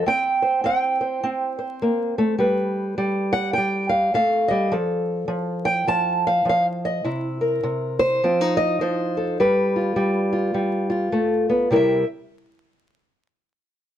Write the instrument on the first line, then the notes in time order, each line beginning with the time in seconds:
steel-string acoustic guitar
0.06 C4 G5
0.42 C5
0.64 C4 G5
1.01 C5
1.23 C4
1.59 C5
1.82 A#3
2.18 A3
2.38 G3 B4
2.98 G3
3.33 F#5
3.53 G5
3.58 G3
3.89 F5
4.14 A3 F5
4.48 G3 D#5
4.72 F3 A4
5.28 F3
5.65 G5
5.87 F3 A5
6.27 F5
6.45 F3
6.49 F5
6.85 D#5
7.04 C3 E4
7.41 A#4
7.63 C3
7.99 C5
8.23 F3 C4
8.41 D#4
8.57 D#5
8.81 F3 C5
9.17 A4
9.40 G3 B4
9.76 F4
9.96 G3
10.33 F4
10.54 G3
10.90 F4
11.12 A3
11.49 B3
11.70 C3 G3 E4 A#4
11.76 E5